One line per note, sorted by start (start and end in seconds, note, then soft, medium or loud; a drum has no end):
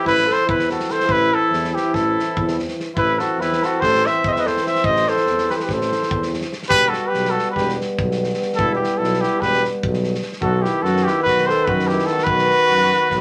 0.00 2.91 E3 medium
0.00 2.91 C4 medium
0.00 0.28 E4 loud
0.05 0.29 A1 medium
0.05 0.34 B4 loud
0.05 kick medium
0.05 snare soft
0.19 snare soft
0.26 0.46 A4 medium
0.26 snare soft
0.33 0.49 C5 loud
0.46 0.82 E2 medium
0.46 0.67 E4 medium
0.46 0.69 B4 medium
0.46 kick medium
0.59 snare soft
0.70 0.92 F#4 medium
0.70 0.93 A4 medium
0.70 snare soft
0.80 snare soft
0.89 1.07 A4 medium
0.89 1.13 C5 loud
0.89 snare soft
1.00 snare soft
1.06 1.31 A1 medium
1.06 1.32 E4 loud
1.06 kick medium
1.12 1.36 B4 loud
1.32 1.73 E4 medium
1.32 1.76 A4 medium
1.51 1.74 E2 medium
1.51 snare soft
1.64 snare soft
1.73 1.95 E4 medium
1.73 1.96 G4 medium
1.77 snare soft
1.93 2.16 A1 medium
1.93 2.58 E4 medium
1.93 2.58 A4 medium
1.93 kick medium
1.93 snare soft
2.19 snare soft
2.36 2.69 E2 medium
2.36 kick medium
2.48 snare soft
2.59 snare soft
2.68 snare soft
2.80 snare soft
2.95 3.20 A1 medium
2.95 6.51 E3 medium
2.95 6.51 C4 medium
2.95 3.22 E4 medium
2.95 3.20 B4 loud
2.95 kick medium
3.19 3.42 F#4 medium
3.19 3.42 A4 medium
3.19 snare soft
3.38 3.62 E2 medium
3.38 3.67 E4 loud
3.38 3.65 B4 medium
3.38 snare soft
3.52 snare soft
3.63 3.85 F#4 medium
3.63 3.82 A4 medium
3.63 snare soft
3.80 4.05 A1 loud
3.80 4.09 A4 loud
3.80 4.08 C5 loud
3.80 kick medium
3.80 snare soft
3.95 snare soft
4.06 4.24 C5 medium
4.06 4.29 E5 loud
4.06 snare soft
4.24 4.57 E2 medium
4.24 4.29 C5 medium
4.24 4.31 D#5 loud
4.24 kick loud
4.29 4.37 C5 medium
4.29 4.41 E5 medium
4.36 4.47 B4 medium
4.36 4.49 D#5 medium
4.36 snare soft
4.45 4.66 A4 medium
4.45 4.69 C5 medium
4.45 snare soft
4.57 snare soft
4.64 4.84 C5 medium
4.64 4.86 E5 loud
4.64 snare soft
4.75 snare soft
4.84 5.07 A1 loud
4.84 5.09 C5 loud
4.84 5.10 D#5 loud
4.84 kick medium
4.96 snare soft
5.07 5.53 A4 medium
5.07 5.51 C5 medium
5.07 snare soft
5.17 snare soft
5.26 5.50 E2 medium
5.26 snare soft
5.38 snare soft
5.50 5.58 G4 medium
5.50 5.54 B4 medium
5.50 5.63 C5 medium
5.50 snare soft
5.56 5.64 A4 medium
5.56 snare soft
5.61 5.74 G4 medium
5.61 5.72 B4 medium
5.69 5.92 A1 medium
5.69 6.33 C5 medium
5.69 kick medium
5.69 snare soft
5.73 6.34 A4 medium
5.81 snare soft
5.92 snare soft
6.03 snare soft
6.11 6.43 E2 medium
6.11 kick medium
6.22 snare soft
6.34 snare soft
6.41 snare soft
6.53 snare soft
6.63 snare soft
6.69 6.93 E1 medium
6.69 10.38 G3 medium
6.69 10.37 B3 medium
6.69 6.90 G4 loud
6.69 6.90 B4 loud
6.69 kick loud
6.88 7.10 F#4 medium
6.88 7.08 A4 medium
6.93 snare soft
7.07 7.33 G4 loud
7.07 7.32 B4 loud
7.12 7.36 B1 medium
7.12 snare soft
7.25 snare soft
7.30 7.53 F#4 medium
7.30 7.51 A4 medium
7.39 snare soft
7.51 7.76 G4 medium
7.51 7.74 B4 medium
7.56 7.79 E1 medium
7.56 kick medium
7.56 snare soft
7.69 snare soft
7.81 snare soft
7.99 8.31 B1 medium
7.99 kick loud
8.11 snare soft
8.24 snare soft
8.34 snare soft
8.42 snare soft
8.53 8.75 A4 loud
8.53 snare soft
8.57 8.80 E1 medium
8.57 8.77 E4 medium
8.57 kick medium
8.76 8.96 E4 medium
8.76 8.99 G4 medium
8.84 snare soft
8.96 9.23 B1 medium
8.96 9.18 E4 medium
8.96 9.22 A4 medium
9.04 snare soft
9.14 snare soft
9.18 9.41 E4 medium
9.18 9.42 G4 medium
9.23 snare soft
9.40 9.64 E1 medium
9.40 9.63 G4 medium
9.40 9.63 B4 loud
9.40 kick soft
9.40 snare soft
9.54 snare soft
9.64 snare soft
9.83 10.16 B1 loud
9.83 kick medium
9.94 snare soft
10.04 snare soft
10.14 snare soft
10.22 snare soft
10.32 snare soft
10.41 10.65 B1 loud
10.41 13.21 D#3 medium
10.41 13.21 B3 medium
10.41 10.65 F#4 medium
10.41 10.64 A4 medium
10.41 kick medium
10.62 10.85 E4 medium
10.62 10.84 G4 medium
10.62 snare soft
10.82 11.06 F#2 loud
10.82 11.10 F#4 medium
10.82 11.05 A4 medium
10.82 snare soft
10.97 snare soft
11.04 11.22 G4 medium
11.04 snare soft
11.08 11.26 E4 medium
11.22 11.49 B1 medium
11.22 11.50 F#4 loud
11.22 11.48 B4 loud
11.22 kick medium
11.27 snare soft
11.38 snare soft
11.46 11.70 A4 medium
11.46 11.66 C5 loud
11.46 snare soft
11.64 12.00 F#2 medium
11.64 11.92 F#4 medium
11.64 11.89 B4 medium
11.64 kick medium
11.79 snare soft
11.88 12.14 E4 medium
11.88 12.07 G4 medium
11.88 snare soft
11.99 snare soft
12.06 12.25 A4 loud
12.06 snare soft
12.12 12.28 F#4 medium
12.18 snare soft
12.24 12.50 B1 medium
12.24 13.21 B4 loud
12.24 kick medium
12.28 13.21 F#4 loud
12.38 snare soft
12.51 snare soft
12.69 12.92 F#2 medium
12.69 snare soft
12.81 snare soft
12.93 snare soft
13.11 13.21 B1 medium
13.11 kick medium
13.11 snare soft